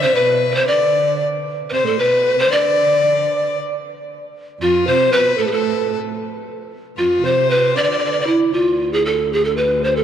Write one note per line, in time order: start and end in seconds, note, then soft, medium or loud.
0.00 0.15 C3 medium
0.00 0.17 C5 medium
0.00 0.17 E5 medium
0.14 0.51 B2 medium
0.14 0.51 B4 medium
0.14 0.67 B4 medium
0.51 0.67 C3 medium
0.51 0.56 B4 medium
0.51 0.69 C5 medium
0.67 1.27 D3 medium
0.67 1.26 D5 medium
0.67 1.23 D5 medium
1.70 1.85 C3 medium
1.70 1.75 B4 medium
1.70 1.87 C5 medium
1.70 2.01 C5 medium
1.85 1.99 A2 medium
1.85 2.00 A4 medium
1.98 2.38 B2 medium
1.98 2.38 B4 medium
1.98 2.41 B4 medium
2.38 2.51 C3 medium
2.38 2.53 C5 medium
2.38 2.54 C5 medium
2.51 3.52 D3 medium
2.51 3.56 D5 medium
2.51 3.57 D5 medium
4.61 4.86 F2 medium
4.61 4.88 F4 medium
4.61 4.90 F4 medium
4.87 5.14 C3 medium
4.87 5.14 C5 loud
4.87 5.14 C5 medium
5.12 5.39 B2 medium
5.12 5.39 B4 medium
5.12 5.42 B4 medium
5.38 5.52 A2 medium
5.38 5.48 A4 medium
5.38 5.53 A4 medium
5.47 5.53 G#4 medium
5.52 5.95 A2 medium
5.52 5.98 A4 medium
5.52 5.96 A4 medium
6.96 7.21 F2 medium
6.96 7.25 F4 medium
6.96 7.26 F4 medium
7.22 7.75 C3 medium
7.22 7.77 C5 medium
7.22 7.52 C5 medium
7.50 7.76 B4 medium
7.75 8.34 D3 medium
7.75 8.34 D5 medium
7.75 7.83 D5 medium
7.84 7.90 D5 medium
7.91 7.98 D5 medium
7.99 8.04 D5 medium
8.05 8.11 D5 medium
8.12 8.19 D5 medium
8.20 8.26 D5 medium
8.27 8.55 E4 medium
8.52 10.04 D2 medium
8.52 8.94 F4 medium
8.93 9.07 G#4 medium
9.05 9.34 A4 medium
9.33 9.46 G#4 medium
9.44 9.58 A4 medium
9.57 9.85 B4 medium
9.84 9.96 C5 medium
9.97 10.04 A4 medium